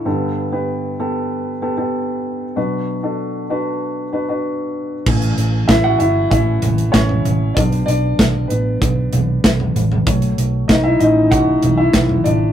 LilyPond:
<<
  \new Staff \with { instrumentName = "Grand piano" } { \time 4/4 \key b \minor \tempo 4 = 96 <b g' a'>8 r16 <b g' b'>8 r16 <b g' a'>8. r16 <b g' a'>16 <b g' a'>4 r16 | <d' fis' b'>8 r16 <d' fis' a'>8 r16 <d' fis' b'>8. r16 <d' fis' b'>16 <d' fis' b'>4 r16 | r4 <e' e''>16 <fis' fis''>16 <e' e''>8 <e' e''>4 <cis' cis''>4 | d''8 <d' d''>4 <b b'>2 r8 |
r4 <dis' dis''>16 <e' e''>16 <dis' dis''>8 <fis' fis''>8. <e' e''>8. <d' d''>8 | }
  \new Staff \with { instrumentName = "Grand piano" } { \time 4/4 \key b \minor <g, d>1 | <b, fis>1 | <e a cis'>2 <e a cis'>8 r4. | <fis b d'>4. r2 r8 |
<fis a cis''>4. <dis a cis'>8 r2 | }
  \new Staff \with { instrumentName = "Fingered electric bass" } { \clef bass \time 4/4 \key b \minor r1 | r1 | a,,8 a,,8 a,,8 g,,8 a,,8 a,,8 a,,8 a,,8 | b,,8 b,,8 b,,8 a,,8 b,,8 b,,8 b,,8 a,,8 |
b,,8 b,,8 b,,8 a,,8 b,,8 b,,8 b,,8 a,,8 | }
  \new DrumStaff \with { instrumentName = "Drums" } \drummode { \time 4/4 r4 r4 r4 r4 | r4 r4 r4 r4 | <cymc bd>16 hh16 hh8 <hh bd sn>8 hh8 <hh bd>8 <hh tomfh>16 hh16 <hh bd sn>16 tomfh16 <hh tomfh>8 | <hh bd>16 hh16 hh8 <hh bd sn>8 hh8 <hh bd>8 <hh tomfh>8 <hh bd sn>16 tomfh16 <hh tomfh>16 tomfh16 |
<hh bd>16 hh16 hh8 <hh bd sn>8 hh8 <hh bd>8 <hh tomfh>8 <hh bd sn>16 tomfh16 <hh tomfh>8 | }
>>